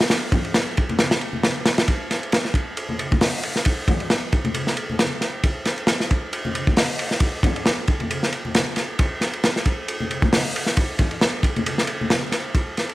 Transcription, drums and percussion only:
0.01 snare loud
0.01 ride medium
0.10 snare loud
0.10 ride medium
0.32 kick medium
0.32 ride medium
0.32 low conga medium
0.45 ride soft
0.54 snare loud
0.54 ride medium
0.77 kick medium
0.77 ride medium
0.89 ride soft
0.89 high conga medium
0.99 snare loud
0.99 ride medium
1.11 snare loud
1.11 ride medium
1.21 ride medium
1.33 high conga medium
1.43 snare loud
1.43 ride medium
1.66 snare loud
1.66 ride medium
1.78 snare loud
1.78 ride medium
1.88 kick loud
1.88 ride medium
2.11 snare soft
2.11 ride medium
2.23 ride soft
2.32 snare loud
2.32 ride medium
2.45 snare soft
2.54 kick medium
2.54 ride medium
2.77 ride medium
2.89 high conga medium
2.99 ride medium
3.11 kick loud
3.11 high conga medium
3.21 snare loud
3.21 open hi-hat medium
3.43 ride medium
3.56 snare soft
3.65 kick loud
3.65 ride medium
3.88 kick medium
3.88 ride medium
3.88 low conga medium
4.00 ride soft
4.10 snare loud
4.10 ride medium
4.32 kick medium
4.32 ride medium
4.45 ride soft
4.45 high conga medium
4.54 ride medium
4.67 snare soft
4.77 ride medium
4.90 high conga medium
4.99 snare loud
4.99 ride medium
5.21 snare soft
5.21 ride medium
5.44 kick loud
5.44 ride medium
5.65 snare soft
5.65 ride medium
5.78 ride soft
5.87 snare loud
5.87 ride medium
6.00 snare soft
6.11 kick medium
6.11 ride medium
6.33 ride medium
6.45 high conga medium
6.55 ride medium
6.67 kick medium
6.67 high conga medium
6.77 snare loud
6.77 open hi-hat medium
6.99 ride medium
7.11 snare soft
7.20 kick loud
7.20 ride medium
7.43 kick medium
7.43 ride medium
7.43 low conga medium
7.56 ride soft
7.66 snare loud
7.66 ride medium
7.87 kick loud
7.87 ride medium
8.00 ride soft
8.00 high conga medium
8.11 ride medium
8.23 snare soft
8.32 ride medium
8.45 high conga medium
8.55 snare loud
8.55 ride medium
8.76 snare soft
8.76 ride medium
8.99 kick loud
8.99 ride medium
9.21 snare soft
9.21 ride medium
9.33 ride soft
9.44 snare loud
9.44 ride medium
9.56 snare soft
9.65 kick medium
9.65 ride medium
9.88 ride medium
10.00 high conga medium
10.11 ride medium
10.22 kick loud
10.22 high conga medium
10.33 snare loud
10.33 open hi-hat medium
10.56 ride medium
10.66 snare soft
10.77 kick loud
10.77 ride medium
10.99 kick medium
10.99 ride medium
10.99 low conga medium
11.11 ride soft
11.21 snare loud
11.21 ride medium
11.43 kick loud
11.43 ride medium
11.56 ride soft
11.56 high conga medium
11.66 ride medium
11.78 snare soft
11.87 ride medium
12.01 high conga medium
12.10 snare loud
12.10 ride medium
12.32 snare soft
12.32 ride medium
12.55 kick loud
12.55 ride medium
12.77 snare soft
12.77 ride medium
12.89 ride soft

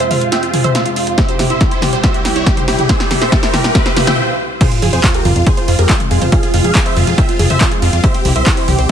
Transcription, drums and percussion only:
0.00 closed hi-hat medium
0.11 open hi-hat medium
0.11 mid tom medium
0.21 closed hi-hat medium
0.32 snare medium
0.32 closed hi-hat medium
0.43 closed hi-hat medium
0.54 open hi-hat loud
0.54 mid tom medium
0.64 closed hi-hat medium
0.64 mid tom medium
0.75 snare medium
0.75 closed hi-hat medium
0.86 closed hi-hat medium
0.96 open hi-hat medium
1.07 closed hi-hat medium
1.18 kick loud
1.18 snare medium
1.18 closed hi-hat medium
1.28 closed hi-hat medium
1.39 snare medium
1.39 open hi-hat loud
1.39 mid tom medium
1.50 closed hi-hat soft
1.61 kick loud
1.61 snare medium
1.61 closed hi-hat medium
1.71 closed hi-hat medium
1.82 snare medium
1.82 open hi-hat medium
1.82 mid tom medium
1.93 closed hi-hat soft
2.04 kick loud
2.04 snare medium
2.04 closed hi-hat medium
2.14 closed hi-hat soft
2.25 snare medium
2.25 open hi-hat loud
2.36 closed hi-hat medium
2.46 kick loud
2.46 snare medium
2.46 closed hi-hat medium
2.57 closed hi-hat medium
2.57 mid tom medium
2.68 snare medium
2.68 open hi-hat medium
2.79 closed hi-hat soft
2.79 mid tom medium
2.89 kick loud
2.89 snare medium
2.89 closed hi-hat medium
3.00 snare medium
3.00 closed hi-hat soft
3.11 snare medium
3.11 open hi-hat loud
3.11 mid tom medium
3.22 snare medium
3.22 closed hi-hat medium
3.32 kick loud
3.32 snare loud
3.32 closed hi-hat medium
3.43 snare medium
3.43 closed hi-hat medium
3.54 snare medium
3.54 open hi-hat medium
3.54 mid tom medium
3.64 snare medium
3.64 closed hi-hat soft
3.75 kick loud
3.75 snare loud
3.75 closed hi-hat medium
3.86 snare medium
3.86 closed hi-hat soft
3.96 snare loud
3.96 open hi-hat loud
3.96 mid tom medium
4.07 snare loud
4.07 closed hi-hat medium
4.07 mid tom medium
4.61 kick loud
4.61 closed hi-hat loud
4.61 crash loud
4.72 closed hi-hat medium
4.82 open hi-hat loud
4.82 mid tom medium
4.93 closed hi-hat medium
5.04 kick loud
5.04 clap loud
5.04 closed hi-hat loud
5.14 closed hi-hat medium
5.25 open hi-hat medium
5.25 mid tom medium
5.36 closed hi-hat medium
5.47 kick loud
5.47 closed hi-hat loud
5.57 closed hi-hat medium
5.68 open hi-hat loud
5.79 closed hi-hat medium
5.89 kick loud
5.89 clap loud
5.89 closed hi-hat loud
6.00 closed hi-hat medium
6.00 mid tom medium
6.11 open hi-hat medium
6.22 closed hi-hat medium
6.22 mid tom medium
6.32 kick loud
6.32 closed hi-hat loud
6.43 closed hi-hat medium
6.54 open hi-hat loud
6.54 mid tom medium
6.64 closed hi-hat medium
6.75 kick loud
6.75 clap loud
6.75 closed hi-hat medium
6.86 closed hi-hat medium
6.97 open hi-hat medium
6.97 mid tom medium
7.07 closed hi-hat medium
7.18 kick loud
7.18 closed hi-hat loud
7.29 closed hi-hat medium
7.39 open hi-hat loud
7.39 mid tom medium
7.50 closed hi-hat medium
7.50 mid tom medium
7.61 kick loud
7.61 clap loud
7.61 closed hi-hat loud
7.72 closed hi-hat medium
7.82 open hi-hat loud
7.93 closed hi-hat medium
8.04 kick loud
8.04 closed hi-hat loud
8.14 closed hi-hat medium
8.25 open hi-hat loud
8.25 mid tom medium
8.36 closed hi-hat medium
8.46 kick loud
8.46 clap loud
8.46 closed hi-hat medium
8.57 closed hi-hat medium
8.68 open hi-hat medium
8.68 mid tom medium
8.79 closed hi-hat medium

